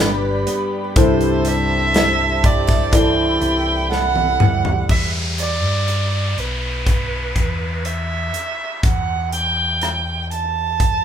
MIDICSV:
0, 0, Header, 1, 8, 480
1, 0, Start_track
1, 0, Tempo, 983607
1, 471, Time_signature, 4, 2, 24, 8
1, 5390, End_track
2, 0, Start_track
2, 0, Title_t, "Violin"
2, 0, Program_c, 0, 40
2, 0, Note_on_c, 0, 74, 82
2, 220, Note_off_c, 0, 74, 0
2, 487, Note_on_c, 0, 72, 83
2, 723, Note_on_c, 0, 76, 99
2, 730, Note_off_c, 0, 72, 0
2, 1199, Note_on_c, 0, 74, 87
2, 1206, Note_off_c, 0, 76, 0
2, 1436, Note_on_c, 0, 79, 93
2, 1444, Note_off_c, 0, 74, 0
2, 1908, Note_off_c, 0, 79, 0
2, 1911, Note_on_c, 0, 78, 99
2, 2371, Note_off_c, 0, 78, 0
2, 2392, Note_on_c, 0, 76, 67
2, 2490, Note_off_c, 0, 76, 0
2, 2634, Note_on_c, 0, 74, 81
2, 3118, Note_on_c, 0, 71, 79
2, 3125, Note_off_c, 0, 74, 0
2, 3835, Note_on_c, 0, 76, 77
2, 3842, Note_off_c, 0, 71, 0
2, 4311, Note_on_c, 0, 78, 80
2, 4319, Note_off_c, 0, 76, 0
2, 4549, Note_off_c, 0, 78, 0
2, 4552, Note_on_c, 0, 79, 88
2, 5012, Note_off_c, 0, 79, 0
2, 5038, Note_on_c, 0, 81, 96
2, 5390, Note_off_c, 0, 81, 0
2, 5390, End_track
3, 0, Start_track
3, 0, Title_t, "Analog synth pad"
3, 0, Program_c, 1, 89
3, 0, Note_on_c, 1, 67, 73
3, 0, Note_on_c, 1, 71, 62
3, 0, Note_on_c, 1, 74, 69
3, 0, Note_on_c, 1, 83, 85
3, 452, Note_off_c, 1, 83, 0
3, 453, Note_off_c, 1, 71, 0
3, 454, Note_off_c, 1, 74, 0
3, 468, Note_on_c, 1, 72, 67
3, 468, Note_on_c, 1, 76, 71
3, 470, Note_on_c, 1, 81, 85
3, 1421, Note_off_c, 1, 81, 0
3, 1431, Note_on_c, 1, 83, 88
3, 2370, Note_off_c, 1, 72, 0
3, 2370, Note_off_c, 1, 76, 0
3, 2373, Note_off_c, 1, 67, 0
3, 2381, Note_off_c, 1, 83, 0
3, 5390, End_track
4, 0, Start_track
4, 0, Title_t, "Grand piano"
4, 0, Program_c, 2, 0
4, 0, Control_c, 2, 64, 127
4, 0, Note_on_c, 2, 62, 74
4, 0, Note_on_c, 2, 67, 69
4, 0, Note_on_c, 2, 71, 81
4, 422, Note_off_c, 2, 62, 0
4, 423, Note_off_c, 2, 67, 0
4, 424, Note_off_c, 2, 71, 0
4, 469, Note_on_c, 2, 64, 70
4, 472, Note_on_c, 2, 43, 59
4, 472, Note_on_c, 2, 69, 61
4, 475, Note_on_c, 2, 72, 68
4, 477, Control_c, 2, 64, 0
4, 573, Control_c, 2, 64, 127
4, 1172, Note_off_c, 2, 43, 0
4, 1382, Note_off_c, 2, 64, 0
4, 1383, Note_off_c, 2, 69, 0
4, 1385, Note_off_c, 2, 72, 0
4, 1428, Note_on_c, 2, 64, 67
4, 1432, Note_on_c, 2, 69, 64
4, 1434, Note_on_c, 2, 74, 68
4, 2341, Note_off_c, 2, 64, 0
4, 2343, Note_off_c, 2, 69, 0
4, 2344, Note_off_c, 2, 74, 0
4, 2398, Control_c, 2, 64, 0
4, 5390, End_track
5, 0, Start_track
5, 0, Title_t, "Steel-string acoustic guitar"
5, 0, Program_c, 3, 25
5, 0, Note_on_c, 3, 43, 75
5, 0, Note_on_c, 3, 55, 66
5, 0, Note_on_c, 3, 59, 60
5, 0, Note_on_c, 3, 62, 60
5, 0, Note_on_c, 3, 67, 70
5, 223, Note_off_c, 3, 59, 0
5, 229, Note_on_c, 3, 59, 58
5, 469, Note_off_c, 3, 43, 0
5, 469, Note_on_c, 3, 48, 69
5, 470, Note_off_c, 3, 67, 0
5, 472, Note_on_c, 3, 69, 59
5, 518, Note_off_c, 3, 59, 0
5, 520, Note_off_c, 3, 62, 0
5, 708, Note_off_c, 3, 55, 0
5, 708, Note_on_c, 3, 55, 56
5, 946, Note_on_c, 3, 64, 55
5, 1183, Note_off_c, 3, 69, 0
5, 1185, Note_on_c, 3, 67, 54
5, 1305, Note_off_c, 3, 67, 0
5, 1305, Note_on_c, 3, 69, 46
5, 1423, Note_on_c, 3, 52, 68
5, 1663, Note_off_c, 3, 64, 0
5, 1665, Note_on_c, 3, 64, 56
5, 1900, Note_off_c, 3, 69, 0
5, 1906, Note_on_c, 3, 69, 65
5, 2144, Note_off_c, 3, 55, 0
5, 2145, Note_on_c, 3, 55, 52
5, 2390, Note_off_c, 3, 48, 0
5, 2436, Note_off_c, 3, 69, 0
5, 2680, Note_off_c, 3, 52, 0
5, 2680, Note_off_c, 3, 55, 0
5, 2680, Note_off_c, 3, 64, 0
5, 5390, End_track
6, 0, Start_track
6, 0, Title_t, "Fingered electric bass"
6, 0, Program_c, 4, 33
6, 0, Note_on_c, 4, 31, 108
6, 211, Note_off_c, 4, 31, 0
6, 470, Note_on_c, 4, 36, 96
6, 1651, Note_off_c, 4, 36, 0
6, 1667, Note_on_c, 4, 36, 96
6, 2129, Note_off_c, 4, 36, 0
6, 2146, Note_on_c, 4, 38, 74
6, 2372, Note_off_c, 4, 38, 0
6, 2388, Note_on_c, 4, 40, 85
6, 2749, Note_off_c, 4, 40, 0
6, 2749, Note_on_c, 4, 43, 67
6, 3090, Note_off_c, 4, 43, 0
6, 3109, Note_on_c, 4, 35, 62
6, 3570, Note_off_c, 4, 35, 0
6, 3592, Note_on_c, 4, 40, 78
6, 4052, Note_off_c, 4, 40, 0
6, 4311, Note_on_c, 4, 40, 79
6, 5390, Note_off_c, 4, 40, 0
6, 5390, End_track
7, 0, Start_track
7, 0, Title_t, "Downlifter"
7, 0, Program_c, 5, 103
7, 2390, Note_on_c, 5, 60, 55
7, 5390, Note_off_c, 5, 60, 0
7, 5390, End_track
8, 0, Start_track
8, 0, Title_t, "Drums"
8, 229, Note_on_c, 9, 42, 77
8, 278, Note_off_c, 9, 42, 0
8, 468, Note_on_c, 9, 42, 93
8, 469, Note_on_c, 9, 36, 101
8, 517, Note_off_c, 9, 42, 0
8, 518, Note_off_c, 9, 36, 0
8, 589, Note_on_c, 9, 42, 42
8, 638, Note_off_c, 9, 42, 0
8, 706, Note_on_c, 9, 42, 76
8, 755, Note_off_c, 9, 42, 0
8, 949, Note_on_c, 9, 42, 73
8, 956, Note_on_c, 9, 38, 102
8, 997, Note_off_c, 9, 42, 0
8, 1005, Note_off_c, 9, 38, 0
8, 1190, Note_on_c, 9, 36, 80
8, 1190, Note_on_c, 9, 42, 52
8, 1239, Note_off_c, 9, 36, 0
8, 1239, Note_off_c, 9, 42, 0
8, 1311, Note_on_c, 9, 36, 73
8, 1315, Note_on_c, 9, 38, 29
8, 1360, Note_off_c, 9, 36, 0
8, 1364, Note_off_c, 9, 38, 0
8, 1428, Note_on_c, 9, 42, 88
8, 1429, Note_on_c, 9, 36, 81
8, 1476, Note_off_c, 9, 42, 0
8, 1478, Note_off_c, 9, 36, 0
8, 1667, Note_on_c, 9, 42, 52
8, 1716, Note_off_c, 9, 42, 0
8, 1913, Note_on_c, 9, 38, 46
8, 1962, Note_off_c, 9, 38, 0
8, 2028, Note_on_c, 9, 48, 64
8, 2077, Note_off_c, 9, 48, 0
8, 2148, Note_on_c, 9, 45, 89
8, 2196, Note_off_c, 9, 45, 0
8, 2269, Note_on_c, 9, 43, 87
8, 2318, Note_off_c, 9, 43, 0
8, 2387, Note_on_c, 9, 49, 62
8, 2388, Note_on_c, 9, 36, 75
8, 2436, Note_off_c, 9, 49, 0
8, 2437, Note_off_c, 9, 36, 0
8, 2627, Note_on_c, 9, 42, 59
8, 2676, Note_off_c, 9, 42, 0
8, 2869, Note_on_c, 9, 42, 55
8, 2918, Note_off_c, 9, 42, 0
8, 3113, Note_on_c, 9, 42, 46
8, 3161, Note_off_c, 9, 42, 0
8, 3350, Note_on_c, 9, 36, 65
8, 3351, Note_on_c, 9, 42, 68
8, 3399, Note_off_c, 9, 36, 0
8, 3399, Note_off_c, 9, 42, 0
8, 3590, Note_on_c, 9, 36, 57
8, 3590, Note_on_c, 9, 42, 46
8, 3639, Note_off_c, 9, 36, 0
8, 3639, Note_off_c, 9, 42, 0
8, 3831, Note_on_c, 9, 42, 60
8, 3880, Note_off_c, 9, 42, 0
8, 4070, Note_on_c, 9, 42, 59
8, 4119, Note_off_c, 9, 42, 0
8, 4311, Note_on_c, 9, 36, 86
8, 4311, Note_on_c, 9, 42, 64
8, 4360, Note_off_c, 9, 36, 0
8, 4360, Note_off_c, 9, 42, 0
8, 4551, Note_on_c, 9, 42, 63
8, 4599, Note_off_c, 9, 42, 0
8, 4790, Note_on_c, 9, 42, 57
8, 4797, Note_on_c, 9, 37, 81
8, 4838, Note_off_c, 9, 42, 0
8, 4846, Note_off_c, 9, 37, 0
8, 5033, Note_on_c, 9, 42, 49
8, 5082, Note_off_c, 9, 42, 0
8, 5270, Note_on_c, 9, 36, 66
8, 5270, Note_on_c, 9, 42, 66
8, 5319, Note_off_c, 9, 36, 0
8, 5319, Note_off_c, 9, 42, 0
8, 5390, End_track
0, 0, End_of_file